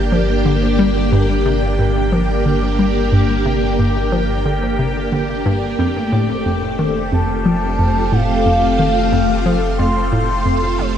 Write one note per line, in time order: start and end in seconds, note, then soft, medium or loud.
0.00 5.76 G1 medium
0.00 5.79 A#3 medium
0.00 7.72 D4 medium
0.00 8.38 G4 medium
0.00 10.98 G4 medium
0.00 10.98 G5 medium
0.12 0.29 F3 medium
0.46 0.62 D3 medium
0.79 0.89 G3 loud
1.12 1.22 G2 loud
1.46 1.62 C3 loud
1.79 2.04 G2 medium
2.12 2.29 F3 loud
2.46 2.62 D3 medium
2.79 2.89 G3 loud
3.12 3.22 G2 loud
3.46 3.62 C3 loud
3.79 4.04 G2 medium
4.12 4.29 F3 loud
4.46 4.62 D3 medium
4.79 4.89 C3 medium
5.12 5.29 D3 medium
5.46 5.62 G2 loud
5.79 10.98 F1 medium
5.79 5.89 F2 loud
5.79 10.98 A3 medium
6.10 6.29 A2 loud
6.10 10.98 C4 medium
6.46 6.70 F2 medium
6.79 6.95 D#3 loud
7.06 10.98 F4 medium
7.12 7.22 F2 loud
7.12 8.14 A5 loud
7.46 7.55 F3 loud
7.79 7.89 F2 loud
8.12 8.29 A2 loud
8.12 9.78 F5 loud
8.46 8.70 F2 medium
8.79 8.95 D#3 loud
9.13 9.22 F2 loud
9.46 9.55 F3 loud
9.79 9.89 F2 loud
9.79 10.80 C6 loud
10.12 10.29 A2 loud
10.46 10.70 F2 medium
10.78 10.95 D#3 loud
10.78 10.98 C5 loud